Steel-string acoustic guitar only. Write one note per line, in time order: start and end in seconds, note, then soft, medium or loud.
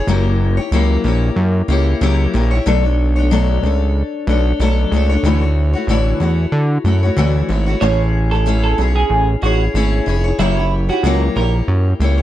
0.08 0.58 F#3 medium
0.08 0.58 A#3 loud
0.08 0.59 E4 medium
0.08 0.58 G4 loud
0.08 0.56 C#5 medium
0.57 0.73 E4 soft
0.57 0.73 G4 soft
0.57 0.72 C#5 medium
0.72 1.05 F#3 loud
0.72 1.03 A#3 medium
0.72 1.04 E4 loud
0.72 1.06 G4 medium
0.72 1.06 C#5 medium
1.04 1.67 A#3 medium
1.04 1.69 E4 medium
1.04 1.70 G4 medium
1.04 1.72 C#5 medium
1.68 2.00 A#3 medium
1.68 2.02 E4 medium
1.68 2.02 G4 medium
1.68 2.02 C#5 medium
2.01 2.34 F#3 medium
2.01 2.32 A#3 medium
2.01 2.34 E4 medium
2.01 2.35 G4 medium
2.01 2.35 C#5 medium
2.34 2.52 A#3 medium
2.34 2.52 E4 medium
2.34 2.52 G4 medium
2.34 2.50 C#5 medium
2.51 2.67 E4 medium
2.51 2.67 G4 soft
2.51 2.66 C#5 medium
2.66 2.84 B2 medium
2.66 2.84 F#3 medium
2.66 2.84 A3 loud
2.66 2.84 D4 loud
2.66 2.84 A4 loud
2.66 2.82 C#5 medium
2.84 3.18 A3 soft
2.84 3.17 D4 medium
2.84 3.16 A4 soft
2.84 3.15 C#5 medium
3.16 3.31 A3 soft
3.16 3.31 D4 soft
3.16 3.31 A4 medium
3.16 3.31 C#5 medium
3.31 3.63 B2 medium
3.31 3.63 F#3 loud
3.31 3.62 A3 medium
3.31 3.64 D4 loud
3.31 3.64 A4 loud
3.31 3.64 C#5 medium
3.63 4.27 A3 medium
3.63 4.29 D4 medium
3.63 4.30 A4 medium
3.63 4.31 C#5 medium
4.27 4.60 A3 medium
4.27 4.60 D4 medium
4.27 4.61 A4 medium
4.27 4.61 C#5 medium
4.60 4.92 B2 medium
4.60 4.92 F#3 medium
4.60 4.91 A3 medium
4.60 4.93 D4 medium
4.60 4.93 A4 loud
4.60 4.93 C#5 medium
4.92 5.10 A3 medium
4.92 5.11 D4 medium
4.92 5.10 A4 medium
4.92 5.08 C#5 medium
5.10 5.24 A3 soft
5.10 5.26 D4 medium
5.10 5.25 A4 medium
5.10 5.24 C#5 medium
5.24 5.42 D3 medium
5.24 5.42 E3 medium
5.24 5.43 A3 loud
5.24 5.43 E4 loud
5.24 5.42 F#4 medium
5.24 5.40 C#5 medium
5.42 5.76 A3 soft
5.42 5.75 E4 soft
5.42 5.74 F#4 soft
5.42 5.72 C#5 medium
5.73 5.89 A3 medium
5.73 5.89 E4 soft
5.73 5.89 F#4 medium
5.73 5.88 C#5 medium
5.89 6.21 D3 medium
5.89 6.21 E3 medium
5.89 6.19 A3 medium
5.89 6.20 E4 loud
5.89 6.21 F#4 loud
5.89 6.22 C#5 medium
6.20 6.84 A3 medium
6.20 6.86 E4 medium
6.20 6.86 F#4 medium
6.20 6.88 C#5 medium
6.85 7.03 A3 medium
6.85 7.03 E4 medium
6.85 7.03 F#4 medium
6.85 7.01 C#5 medium
7.03 7.16 A3 soft
7.03 7.17 E4 soft
7.03 7.18 F#4 soft
7.03 7.17 C#5 medium
7.17 7.49 D3 medium
7.17 7.50 E3 loud
7.17 7.47 A3 medium
7.17 7.49 E4 medium
7.17 7.50 F#4 medium
7.17 7.51 C#5 loud
7.49 7.67 A3 medium
7.49 7.68 E4 medium
7.49 7.67 F#4 medium
7.49 7.65 C#5 medium
7.66 7.80 A3 medium
7.66 7.81 E4 medium
7.66 7.82 F#4 medium
7.66 7.81 C#5 medium
7.81 8.31 A3 medium
7.81 8.32 C#4 medium
7.81 8.32 E4 medium
7.81 8.32 G#4 medium
7.81 8.30 C#5 medium
8.31 8.46 E4 soft
8.31 8.47 G#4 soft
8.31 8.46 C#5 medium
8.46 8.78 A3 medium
8.46 8.77 C#4 medium
8.46 8.78 E4 medium
8.46 8.79 G#4 medium
8.46 8.80 C#5 loud
8.78 9.41 C#4 medium
8.78 9.43 E4 medium
8.78 9.43 G#4 medium
8.78 9.45 C#5 medium
9.42 9.74 C#4 medium
9.42 9.75 E4 medium
9.42 9.76 G#4 medium
9.42 9.76 C#5 medium
9.75 10.07 A3 medium
9.75 10.05 C#4 medium
9.75 10.07 E4 medium
9.75 10.08 G#4 medium
9.75 10.09 C#5 loud
10.06 10.25 C#4 medium
10.06 10.25 E4 medium
10.06 10.25 G#4 medium
10.06 10.23 C#5 medium
10.24 10.39 E4 medium
10.24 10.40 G#4 medium
10.24 10.39 C#5 medium
10.39 10.57 F#3 medium
10.39 10.58 A#3 loud
10.39 10.58 E4 medium
10.39 10.58 G4 medium
10.39 10.56 C#5 medium
10.57 10.91 E4 soft
10.57 10.90 G4 soft
10.57 10.88 C#5 medium
10.89 11.04 E4 soft
10.89 11.05 G4 medium
10.89 11.04 C#5 medium
11.04 11.36 F#3 medium
11.04 11.35 A#3 loud
11.04 11.36 E4 medium
11.04 11.37 G4 medium
11.04 11.38 C#5 loud
11.36 11.99 A#3 medium
11.36 12.00 E4 medium
11.36 12.02 G4 medium
11.36 12.04 C#5 medium
12.00 12.18 A#3 medium
12.00 12.19 E4 medium
12.00 12.18 G4 medium
12.00 12.17 C#5 medium
12.18 12.22 C#5 medium